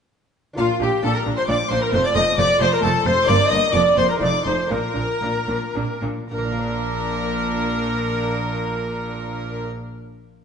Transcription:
0.53 D4 F4 A#4
0.58 A#1 A#2 D4 F4 F5
0.80 A#1 A#2 D4 G4 G5
1.03 A#1 A#2 D4 A4 A5
1.14 A#4 A#5
1.26 A#1 A#2 D4
1.37 C5 C6
1.48 A#1 A#2 D4 D5 D6
1.70 A#1 A#2 D4 C5 C6
1.82 A#4 A#5
1.89 A3 C4 F4 A4 C6
1.93 F1 F2 C5
2.04 D5 D6
2.15 F1 F2 A3 D#5 D#6
2.38 F1 F2 A3 D5 D6
2.60 F1 F2 A3 C5 C6
2.73 A#4 A#5
2.82 F1 F2 A3 A4 A5
3.05 F1 F2 A3 C5 C6
3.23 A#3 D4 A#4 D6
3.28 G1 G2 A#3 D5
3.50 G1 G2 A#3 D#5 D#6
3.69 A#3 D4 F4
3.73 F1 F2 A#3 D5 D6
3.96 F1 F2 A#3 C5 C6
4.09 A#4 A#5
4.16 A3 D#4 F4
4.21 F1 F2 D#4 D5 D6
4.45 F1 F2 D#4 C5 C6
4.66 A#3 D4 F4
4.70 A#1 A#2 D4 A#4 A#5
4.95 A#1 A#2 D4
5.21 A#1 A#2 D4
5.48 A#1 A#2 D4
5.75 A#1 A#2 D4
6.02 A#1 A#2 D4
6.30 A#1 A#2 D4 A#4 A#5
6.38 A#3
6.45 D4
6.52 F4
6.59 D5

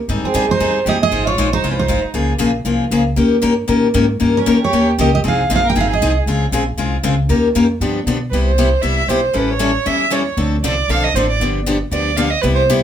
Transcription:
0.08 G#2 D#3 G3 C4 D#4 G#4
0.23 C4 G#4, muted upright bass stroke
0.34 G2 D#3 G3 C4 D#4 G#4
0.48 D#4 C5, muted upright bass stroke
0.59 F2 D#3 G3 C4 D#4 G#4
0.86 D#2 D#3 G3 C4 D#4 G4 G#4 D#5
1.03 G#4 D#5
1.11 G#1 G#3 D#4 F4 C5
1.26 F4 C#5
1.37 A#1 G#3 D#4 F4 C5
1.53 D#4 C5
1.62 C2 G#3 D#4 F4 C5
1.71 C#4 B4
1.79 D#4 C5
1.88 G#1 G#3 D#4 F4 C5
2.03 muted upright bass stroke
2.14 C#2 C#3 F3 A#3 F4 G#4
2.38 A#1 C#3 F3 A#3 F4 G#4
2.65 C2 C#3 F3 A#3 F4 G#4
2.91 C#2 C#3 F3 A#3 F4 G#4
3.16 D#2 D#3 A#3 C#4 G4 A#4
3.42 G2 D#3 A#3 C#4 G4 A#4
3.68 A#2 D#3 A#3 C#4 G4 A#4
3.94 G#2 D#3 A#3 C#4 G4 A#4
4.20 G2 D#3 A#3 C#4 G4 A#4
4.37 C#4 A#4
4.46 F2 D#3 A#3 C#4 G4 A#4
4.62 G4 C#5
4.73 D#2 D#3 A#3 C#4 G4 A#4
4.98 C#2 D#3 A#3 C#4 G4 A#4 D#5
5.15 G4 D#5
5.24 C2 F3 C4 D#4 G#4
5.28 F5
5.50 A#1 F3 C4 D#4 G#4
5.56 F5
5.64 A#4
5.70 G5
5.75 G#1 F3 C4 D#4 G#4
5.80 F5
5.89 G#4
5.93 D#5
6.00 C2 F3 C4 D#4 G#4
6.26 C#2 C#3 G#3 C4 F4 G#4
6.51 A#1 C#3 G#3 C4 F4 G#4
6.77 C2 C#3 G#3 C4 F4 G#4
7.03 C#2 C#3 G#3 C4 F4 G#4
7.29 D#2 D#3 A#3 C#4 G4 A#4
7.55 F2 D#3 A#3 C#4 G4 A#4
7.80 G2 D3 F3 B3 D4 G4
8.06 B2 D3 F3 B3 D4 G4
8.30 C2 C3 G3 B3 E4 G4 B4
8.45 C5
8.58 C3 G3 B3 E4 G4
8.82 C2 C3 G3 B3 E4 G4 E5
9.07 B1 C3 G3 B3 E4 G4 C5
9.33 A1 E3 G3 C#4 E4 A4 B4
9.51 C#5
9.59 E3 G3 C#4 E4 A4
9.86 E2 E3 G3 C#4 E4 A4 E5
10.10 E3 G3 C#4 E4 A4 C#5
10.37 D2 D3 F3 C4 D4 A4
10.63 C2 D3 F3 C4 D4 A4 D5
10.88 B1 D3 F3 C4 D4 A4 F5
11.04 D#5
11.14 A1 D3 F3 C4 D4 A4 C5
11.30 D5
11.40 G1 D3 F3 B3 D4 G4
11.66 D3 F3 B3 D4 G4
11.91 D2 D3 F3 B3 D4 G4 D5
12.16 D3 F3 B3 D4 G4 F5
12.30 D#5
12.41 C2 C3 G3 B3 E4 G4 B4
12.54 C5
12.70 C3 G3 B3 E4 G4

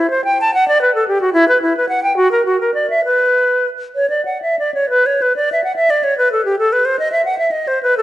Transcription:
0.10 C5
0.24 G5
0.41 A5
0.54 F#5
0.68 D5
0.81 B4
0.95 A4
1.08 G4
1.21 F#4
1.33 E4
1.48 B4
1.62 E4
1.77 B4
1.89 F#5
2.03 G5
2.17 F#4
2.31 A#4
2.45 F#4
2.60 A#4
2.74 D5
2.90 E5
3.05 B4
3.95 C#5
4.10 D5
4.25 F#5
4.42 E5
4.59 D5
4.74 C#5
4.89 B4
5.06 C#5
5.22 B4
5.36 D5
5.52 E5
5.64 F#5
5.76 E5
5.90 D5
6.03 C#5
6.18 B4
6.32 A4
6.45 G4
6.59 A4
6.72 B4
6.85 C5
6.99 D#5
7.12 E5
7.25 F#5
7.38 E5
7.51 D#5
7.67 C5
7.83 B4
7.97 A4

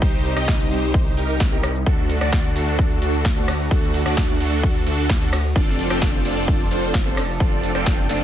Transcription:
Already playing: C3 G3 D#4
0.02 C2 D#4 G4 C5, kick, closed hi-hat, cabasa
0.13 closed hi-hat
0.25 open hi-hat, cabasa
0.37 C2 D#4 G4 D#5, cross-stick, closed hi-hat, cabasa
0.48 kick, snare, closed hi-hat, cabasa
0.60 closed hi-hat, cabasa
0.71 C2 D#4 G4 C5, open hi-hat, cabasa
0.83 closed hi-hat, cabasa
0.94 kick, closed hi-hat, cabasa
1.06 closed hi-hat, cabasa
1.17 C2 D#4 G4 A#4, open hi-hat, cabasa
1.29 closed hi-hat, cabasa
1.40 kick, snare, closed hi-hat, cabasa
1.52 C2 D#4 G4 A#4, closed hi-hat, cabasa
1.63 cross-stick, open hi-hat, cabasa
1.75 closed hi-hat, cabasa
1.86 D2 D3 A3 D4 F#4 A4, kick, closed hi-hat, cabasa
1.98 closed hi-hat
2.10 open hi-hat, ride, cabasa
2.21 D2 D4 F#4 D5, cross-stick, closed hi-hat, cabasa
2.32 kick, snare, closed hi-hat, cabasa
2.44 closed hi-hat, cabasa
2.56 D2 D4 F#4 A4, open hi-hat, ride, cabasa
2.67 closed hi-hat, cabasa
2.79 kick, closed hi-hat, cabasa
2.90 closed hi-hat, cabasa
3.02 D2 D4 F#4 A4, open hi-hat, ride, cabasa
3.13 closed hi-hat, cabasa
3.25 kick, snare, closed hi-hat, cabasa
3.36 D2 D4 F#4 A4, closed hi-hat, cabasa
3.48 cross-stick, open hi-hat, ride, cabasa
3.60 closed hi-hat, cabasa
3.71 D2 D4 F#4 A4, kick, closed hi-hat, cabasa
3.83 closed hi-hat
3.94 open hi-hat, ride, cabasa
4.06 D2 D4 F#4 D5, cross-stick, closed hi-hat, cabasa
4.17 kick, snare, closed hi-hat, cabasa
4.29 closed hi-hat, cabasa
4.40 D2 D4 F#4 A4, open hi-hat, ride, cabasa
4.52 closed hi-hat, cabasa
4.63 kick, closed hi-hat, cabasa
4.75 closed hi-hat, cabasa
4.87 D2 D4 F#4 A4, open hi-hat, ride, cabasa
4.98 closed hi-hat, cabasa
5.09 kick, snare, closed hi-hat, cabasa
5.21 D2 D4 F#4 A4, closed hi-hat, cabasa
5.33 cross-stick, open hi-hat, ride, cabasa
5.44 closed hi-hat, cabasa
5.56 F1 F3 C4 D4 F4 A4 D5, kick, closed hi-hat, cabasa
5.67 closed hi-hat
5.79 open hi-hat, ride, cabasa
5.90 F1 C4 D4 F4 A4 G5, cross-stick, closed hi-hat, cabasa
6.02 kick, snare, closed hi-hat, cabasa
6.13 closed hi-hat, cabasa
6.25 F1 C4 D4 F4 A4 D5, open hi-hat, ride, cabasa
6.37 closed hi-hat, cabasa
6.48 kick, closed hi-hat, cabasa
6.60 closed hi-hat, cabasa
6.71 F1 C4 D4 F4 A4 C5, open hi-hat, ride, cabasa
6.83 closed hi-hat, cabasa
6.94 kick, snare, closed hi-hat, cabasa
7.06 F1 C4 D4 F4 A4 C5, closed hi-hat, cabasa
7.17 cross-stick, open hi-hat, ride, cabasa
7.29 closed hi-hat, cabasa
7.40 F1 C4 D4 F4 A4 D5, kick, closed hi-hat, cabasa
7.52 closed hi-hat, cabasa
7.63 open hi-hat, ride, cabasa
7.75 F1 C4 D4 F4 A4 G5, cross-stick, closed hi-hat, cabasa
7.86 kick, snare, closed hi-hat, cabasa
7.98 closed hi-hat, cabasa
8.09 F1 C4 D4 F4 A4 D5, snare, open hi-hat, ride, cabasa

